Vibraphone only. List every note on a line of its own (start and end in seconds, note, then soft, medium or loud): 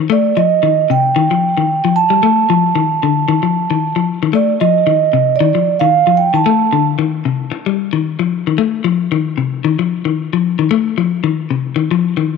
0.12 0.38 D5 medium
0.37 0.86 D#5 medium
0.91 1.92 G5 loud
1.96 4.03 A5 loud
4.35 4.47 D5 medium
4.61 5.36 D#5 medium
5.36 5.76 D5 medium
5.79 6.16 F5 medium
6.17 6.24 G5 medium
6.35 6.84 A5 medium